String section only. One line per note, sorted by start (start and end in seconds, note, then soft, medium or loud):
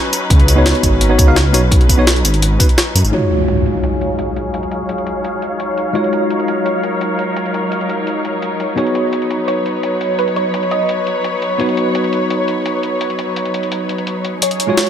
0.00 3.09 F#3 medium
0.00 3.09 C#4 medium
0.00 3.09 D#4 medium
0.00 3.08 B4 medium
3.12 14.38 F#3 medium
3.12 14.38 D#4 medium
3.12 5.92 G#4 medium
3.12 8.73 C#5 medium
3.12 8.73 F5 medium
5.95 8.74 A#4 medium
8.77 14.38 B4 medium
8.77 14.38 C#5 medium
14.42 14.89 F#3 medium
14.42 14.89 C#4 medium
14.42 14.89 D#4 medium
14.42 14.89 G#4 medium
14.42 14.89 C#5 medium